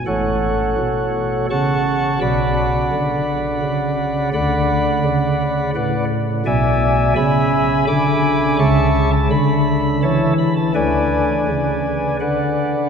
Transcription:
<<
  \new Staff \with { instrumentName = "Pipe organ" } { \time 3/4 \key b \dorian \tempo 4 = 84 <a' cis'' fis''>2 <fis'' a'' cis'''>4 | <d'' fis'' b''>2. | <d'' fis'' b''>2 <b' d'' fis''>8 r8 | \key a \major <d'' e'' gis''>4 <e'' gis'' b''>4 <gis'' b'' d'''>4 |
<e'' a'' cis'''>8. a''16 b''4 <cis'' e'' a''>8 b''16 a''16 | <b' d'' gis''>2 <b' d'' fis''>4 | }
  \new Staff \with { instrumentName = "Pipe organ" } { \clef bass \time 3/4 \key b \dorian <a,, a,>4 b,4 cis4 | <b,, b,>4 d4 cis4 | <d, d>4 cis4 a,4 | \key a \major <b,, b,>4 cis4 d4 |
<cis, cis>4 d4 e4 | <d, d>4 cis4 d4 | }
>>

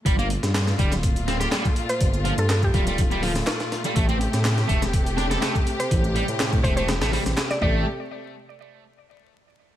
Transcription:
<<
  \new Staff \with { instrumentName = "Synth pluck" } { \time 4/4 \key a \phrygian \tempo 4 = 123 r2. r8. c''16~ | c''8 r16 a'16 a'16 g'4. r4 r16 | r2. r8. c''16~ | c''8 r4 c''16 c''16 r4 r16 d''16 d''16 r16 |
r1 | }
  \new Staff \with { instrumentName = "Distorted electric guitar" } { \time 4/4 \key a \phrygian g16 bes16 r4 g16 r8. c'16 g'16 g16 r8. | r8 f16 r8. g16 g16 r16 g16 f16 r4 g16 | a16 c'16 r4 a16 r8. d'16 a'16 a16 r8. | r8 g16 r8. a16 a16 r16 a16 g16 r8. a8 |
r1 | }
  \new Staff \with { instrumentName = "String section" } { \time 4/4 \key a \phrygian << { <bes, f'>1~ | <bes, f'>1 | <c g'>1~ | <c g'>2.~ <c g'>8 <c a g'>8 |
r1 | } \\ { a1~ | a1~ | a1~ | a2.~ a8 r8 |
r1 | } >> }
  \new Staff \with { instrumentName = "Detuned saw bass" } { \clef bass \time 4/4 \key a \phrygian g,,8 r16 g,8 r16 d,,4~ d,,16 r4 r16 | g,,8 r16 g,8 r16 d,,4~ d,,16 r4 r16 | a,,8 r16 a,8 r16 e,,4~ e,,16 r4 r16 | a,,8 r16 a,8 r16 e,,8. a,,16 r16 a,,16 r8 a,,8 |
r1 | }
  \new DrumStaff \with { instrumentName = "Drums" } \drummode { \time 4/4 <hh bd>16 hh16 hh16 <hh sn>16 <hc hh sn>16 <hh sn>16 <hh bd>16 <hh sn>16 <hh bd>16 hh16 <hh sn>16 <hh sn>16 <hc hh sn>16 <hh bd>16 hh16 hh16 | <hh bd>16 hh16 hh16 hh16 <hc hh sn>16 <hh bd>16 <hh bd>16 hh16 <hh bd>16 hh16 <hho sn>16 <hh sn>16 <hc hh sn>16 <hh sn>16 <hh sn>16 hh16 | <hh bd>16 hh16 hh16 <hh sn>16 <hc hh sn>16 <hh sn>16 <hh bd>16 <hh sn>16 <hh bd>16 hh16 <hh sn>16 <hh sn>16 <hc hh sn>16 <hh bd>16 hh16 hh16 | <hh bd>16 hh16 hh16 hh16 <hc hh sn>16 <hh bd>16 <hh bd>16 hh16 <hh sn>16 <hh sn>16 <hho sn>16 <hh sn>16 <hc hh sn>16 <hh sn>16 bd8 |
r4 r4 r4 r4 | }
>>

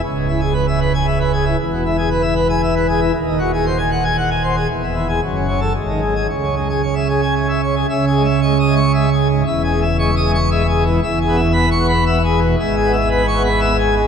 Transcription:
<<
  \new Staff \with { instrumentName = "Pipe organ" } { \time 3/4 \key cis \minor \tempo 4 = 115 << { r4. r16 gis''16 r4 | r4. r16 gis''16 r4 | r4 r16 gis''16 r4. | r8. gis'16 r8. a'16 r8. gis'16 |
r4. r16 gis''16 r4 | \tuplet 3/2 { e''8 gis'8 e''8 cis'''8 dis'''8 cis'''8 e''8 gis'8 gis,8 } | \tuplet 3/2 { e''8 gis'8 e''8 cis'''8 dis'''8 cis'''8 e''8 gis'8 e8 } | \tuplet 3/2 { e''8 gis'8 e''8 b''8 cis'''8 b''8 e''8 gis'8 b,8 } |
\tuplet 3/2 { e''8 gis'8 e''8 b''8 cis'''8 b''8 e''8 gis'8 gis8 } | } \\ { cis,16 gis,16 e'16 gis'16 b'16 e''16 b'16 r16 e''16 b'16 gis'16 e'16 | e,16 b,16 e'16 gis'16 b'16 e''16 b'16 r16 e''16 b'16 gis'16 e'16 | dis,16 dis16 fis'16 gis'16 bis'16 r16 fis''16 gis''16 fis''16 gis''16 bis'16 gis'16 | e,16 e16 e'16 r16 fis,16 cis16 cis'16 r16 gis,16 dis16 gis16 r16 |
cis16 cis'16 gis16 gis'16 cis''16 e''16 gis'16 r16 gis'16 e''16 cis''16 gis'16 | cis8 gis16 r16 gis16 r16 gis16 r16 gis16 r8. | e,8 gis16 r16 gis16 r16 gis16 r16 gis16 r8. | e,8 b16 r16 b16 r16 b16 r16 b16 r8. |
gis,8 b16 r16 b16 r16 b16 r16 b16 r8. | } >> }
  \new Staff \with { instrumentName = "Pipe organ" } { \clef bass \time 3/4 \key cis \minor cis,,2. | e,,2. | dis,,2. | e,,4 fis,,4 gis,,4 |
cis,2. | cis,2. | e,,2. | e,,2. |
gis,,2. | }
>>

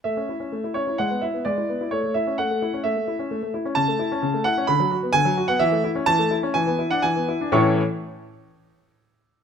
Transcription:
<<
  \new Staff \with { instrumentName = "Grand piano" } { \time 4/4 \key a \major \tempo 4 = 129 e''4. cis''8 fis''8 e''8 d''4 | cis''8 e''8 fis''4 e''4. r8 | a''4. fis''8 b''4 gis''8. fis''16 | e''4 a''4 gis''8. fis''16 gis''4 |
<a, e cis' e' a' cis'' cis'''>8 r2. r8 | }
  \new Staff \with { instrumentName = "Grand piano" } { \time 4/4 \key a \major a16 cis'16 e'16 cis'16 a16 e'16 cis'16 e'16 gis16 b16 e'16 b16 gis16 e'16 b16 e'16 | a16 a16 e'16 cis'16 a16 a16 e'16 cis'16 a16 a16 e'16 cis'16 a16 a16 e'16 cis'16 | cis16 a16 e'16 cis'16 cis16 a16 e'16 cis'16 d16 fis16 fis'16 b16 d16 fis16 fis'16 b16 | e16 a16 e'16 cis'16 e16 a16 e'16 cis'16 e16 b16 e'16 d'16 e16 b16 e'16 d'16 |
r1 | }
>>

